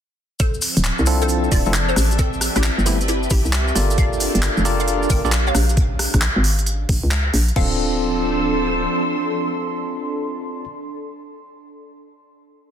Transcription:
0.40 string machine F3 C4 A4 E5, analog synth pad C4, synth pluck A4 C5, kick, closed hi-hat, cabasa
0.54 cabasa
0.62 open hi-hat, cabasa
0.76 fm bass D1, analog synth pad F3 A5, closed hi-hat, cabasa
0.84 clap, closed hi-hat, cabasa
0.98 fm bass C2, cabasa
1.06 tine electric piano C4 D4 E4 F4 A4, open hi-hat, cabasa
1.22 synth pluck A4 C5, analog synth pad D5, closed hi-hat, cabasa
1.28 closed hi-hat, cabasa
1.44 cabasa
1.52 fm bass D1, synth pluck F4 D5, kick, open hi-hat, cabasa
1.65 fm bass F1, tine electric piano C4 D4 E4 F4 A4, cabasa
1.74 clap, closed hi-hat, cabasa
1.89 synth pluck A4 C5, cabasa
1.96 fm bass A1, cross-stick, open hi-hat, cabasa
2.11 closed hi-hat, cabasa
2.19 synth pluck C4 A4, string machine G4 B4, kick, closed hi-hat, cabasa
2.32 analog synth pad G4, cabasa
2.41 cross-stick, open hi-hat, cabasa
2.56 fm bass A1, synth pluck E4 G4, cross-stick, closed hi-hat, cabasa
2.64 clap, closed hi-hat, cabasa
2.78 fm bass G1, cabasa
2.86 tine electric piano G3 A3 B3 C4 E4, synth pluck E4 G4, open hi-hat, cabasa
2.90 analog synth pad E5
3.01 closed hi-hat, cabasa
3.08 synth pluck E4 G4, closed hi-hat, cabasa
3.23 cabasa
3.30 fm bass A1, synth pluck E4 G4, kick, open hi-hat, cabasa
3.45 fm bass C2, cabasa
3.53 clap, closed hi-hat, cabasa
3.68 cabasa
3.75 fm bass G1, string machine A#3 D4 F4 A5, analog synth pad D4, tine electric piano F4 G4 A4 A#4 D5, open hi-hat, cabasa
3.90 closed hi-hat, cabasa
3.98 synth pluck D5 F5, kick, closed hi-hat, cabasa
4.13 cabasa
4.20 analog synth pad F5, open hi-hat, cabasa
4.35 fm bass G1, closed hi-hat, cabasa
4.43 clap, closed hi-hat, cabasa
4.57 fm bass F1, cabasa
4.65 tine electric piano F4 G4 A4 A#4 D5, open hi-hat, cabasa
4.80 synth pluck D5 F5, closed hi-hat, cabasa
4.88 closed hi-hat, cabasa
5.03 cabasa
5.10 fm bass G1, synth pluck A#4 G5, kick, open hi-hat, cabasa
5.24 fm bass A#1, tine electric piano F4 G4 A4 A#4 D5, cabasa
5.32 clap, closed hi-hat, cabasa
5.47 synth pluck C#5 F5, cabasa
5.55 fm bass A#1, analog synth pad C#4, cross-stick, open hi-hat, cabasa
5.68 analog synth pad G#4, closed hi-hat, cabasa
5.77 kick, closed hi-hat
5.99 cross-stick, open hi-hat
6.14 fm bass A#1, kick, cross-stick, closed hi-hat
6.22 clap, closed hi-hat
6.36 fm bass G#1
6.44 open hi-hat
6.59 closed hi-hat
6.66 closed hi-hat
6.89 fm bass A#1, kick, open hi-hat
7.03 fm bass C#2
7.11 clap, closed hi-hat
7.34 fm bass A#1, open hi-hat
7.48 closed hi-hat
7.56 fm bass D1, string machine F3 C4 A4 E6, tine electric piano C4 D4 F4 A4, analog synth pad D4, synth pluck F5, kick, crash
7.65 analog synth pad A4
7.77 analog synth pad C6

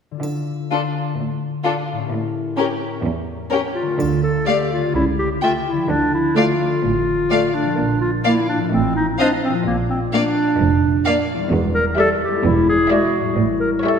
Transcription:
0.11 harp D3 D4
0.17 harp F4 A4
0.22 cello section D3, triangle
0.70 viola section D4, violin section F4 A4
1.18 cello section A2
1.63 viola section D4, violin section F4 A4
1.93 harp A2
1.97 harp C#4
2.02 harp G4
2.06 harp A#4
2.10 cello section A2
2.57 viola section C#4, violin section G4 A#4
3.04 cello section E2
3.51 viola section C#4, violin section G4 A#4
3.74 clarinet F4
3.82 harp D3
3.87 harp A3
3.91 harp F4
3.96 harp A4
4.00 double bass section D2, cello section D3, triangle
4.23 clarinet A4
4.47 viola section A3, clarinet G4, violin section D5 F5
4.73 clarinet F4
4.77 harp C#3
4.82 harp A3
4.86 harp G4
4.90 harp A4
4.95 double bass section C#2, cello section C#3, clarinet E4
5.19 clarinet G4
5.42 viola section A3, clarinet F4, violin section E5 G5
5.66 clarinet E4
5.72 harp D3
5.76 harp F3
5.81 harp F4
5.85 double bass section D2, harp A4
5.90 cello section D3, clarinet D4
6.14 clarinet E4
6.36 viola section A3, clarinet F4, violin section D5 F5
6.84 double bass section A1, cello section A2
7.30 viola section A3, violin section D5 F5
7.55 clarinet D4
7.60 harp A#2
7.65 harp F3
7.69 harp F4
7.74 double bass section A#1, cello section A#2, harp A#4
8.01 clarinet F4
8.24 viola section A#3, clarinet E4, violin section D5 F5
8.49 clarinet D4
8.55 harp A2
8.60 harp F3
8.64 harp F4
8.69 double bass section A1, cello section A2, clarinet C4, harp D#5
8.96 clarinet D#4
9.19 viola section C4, clarinet D4, violin section D#5 F5
9.44 clarinet C4
9.49 harp A#2
9.53 harp F3
9.58 harp F4
9.63 double bass section A#1, cello section A#2, clarinet A#3, harp D5
9.90 clarinet C4
10.12 viola section A#3, clarinet D4, violin section D5 F5
10.59 double bass section F1, cello section F2
11.05 viola section A#3, violin section D5 F5
11.34 harp E2
11.39 harp G3
11.43 harp E4
11.48 double bass section E1, cello section E2, harp D5
11.75 clarinet A#4
11.98 viola section G3, clarinet A4, violin section D5 E5
12.23 clarinet G4
12.27 harp E2
12.31 harp G#3
12.36 harp E4
12.41 double bass section E1, cello section E2, harp D5
12.45 clarinet E4
12.69 clarinet G#4
12.90 viola section G#3, clarinet F#4, violin section D5 E5
13.19 harp A2
13.24 harp G3
13.28 harp E4
13.33 double bass section A1, cello section A2, harp C#5
13.60 clarinet A#4
13.83 viola section G3, clarinet A4, violin section C#5 E5

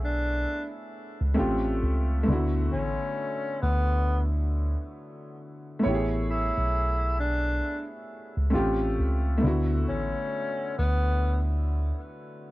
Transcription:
Already playing: tine electric piano B1, upright piano A3 B3 E4 G#4 C#5
0.04 tenor saxophone D4
1.21 tine electric piano C#2
1.34 upright piano A3 C4 C#4 F4
1.39 tine electric piano A1, upright piano G4
1.83 tine electric piano C#2
2.23 upright piano A3 B3
2.28 tine electric piano D2, upright piano D3 E4
2.32 upright piano F#4
2.72 tine electric piano A1, tenor saxophone C#4
3.62 tine electric piano D2, tenor saxophone B3
5.79 upright piano A3 B3
5.84 tine electric piano A1, upright piano E4 C#5
5.88 upright piano G4
5.95 upright piano G#4
6.30 tenor saxophone E4
6.58 tine electric piano B1
7.20 tenor saxophone D4
8.37 tine electric piano C#2
8.50 upright piano A3 C4 C#4 F4
8.55 tine electric piano A1, upright piano G4
9.00 tine electric piano C#2
9.38 upright piano A3 B3
9.42 tine electric piano D2, upright piano D3 E4
9.47 upright piano F#4
9.88 tine electric piano A1, tenor saxophone C#4
10.78 tine electric piano D2, tenor saxophone B3

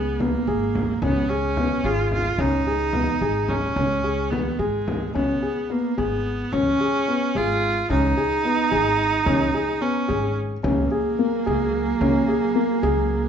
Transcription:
Already playing: upright bass C#2, viola B3, felt piano G#4
0.20 viola A#3, felt piano B3, frame drum
0.47 upright bass G#1, felt piano G#4
0.75 frame drum
1.02 upright bass C#2, viola B3, felt piano C#4, frame drum
1.29 viola C#4, felt piano G#4
1.57 felt piano B3, frame drum
1.84 upright bass G#1, viola F4, felt piano G#4
2.11 viola F4, frame drum
2.38 upright bass C#2, felt piano C#4, viola D#4, frame drum
2.67 felt piano G#4
2.93 felt piano B3, frame drum
3.21 upright bass G#1, felt piano G#4
3.48 viola C#4, frame drum
3.76 upright bass C#2, felt piano C#4, frame drum
4.04 felt piano G#4
4.31 viola B3, felt piano B3, frame drum
4.58 upright bass G#1, viola G#3, felt piano G#4, frame drum
4.88 frame drum
5.14 upright bass C#2, viola B3, felt piano C#4, frame drum
5.42 felt piano G#4
5.70 viola A#3, felt piano B3
5.97 upright bass G#1, viola B3, felt piano G#4, frame drum
6.52 upright bass C#2, viola C#4, felt piano C#4, frame drum
6.80 felt piano G#4
7.08 felt piano B3
7.35 upright bass G#1, viola F4, felt piano G#4, frame drum
7.90 upright bass C#2, felt piano C#4, viola D#4, frame drum
8.17 felt piano G#4
8.44 felt piano B3
8.71 upright bass G#1, felt piano G#4, frame drum
9.26 upright bass C#2, felt piano C#4, frame drum
9.54 felt piano G#4
9.81 felt piano B3, viola C#4
10.08 upright bass G#1, felt piano G#4, frame drum
10.63 upright bass C#2, ambient pad F#3 A#3 G#4, viola A#3, felt piano C#4, frame drum
10.91 felt piano G#4
11.19 felt piano A#3
11.46 upright bass C#2, felt piano G#4, frame drum
12.01 upright bass C#2, felt piano C#4, frame drum
12.28 felt piano G#4
12.55 felt piano A#3
12.83 upright bass C#2, felt piano G#4, frame drum

